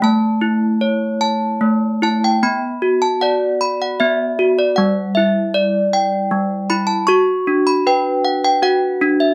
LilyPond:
\new Staff \with { instrumentName = "Handbells" } { \time 3/4 \key d \major \tempo 4 = 77 << { a''2 r8 a''16 g''16 | b''8. a''16 fis''8. fis''16 e''8. d''16 | fis''8 e''8 d''4. b''16 a''16 | cis'''8. b''16 g''8. g''16 fis''8. e''16 | } \\ { a8 e'8 cis''8 a''8 a8 e'8 | b8 fis'8 d''8 b''8 b8 fis'8 | g8 e'4 g''8 g8 e'8 | fis'8 d'8 b'8 fis''8 fis'8 d'8 | } >> }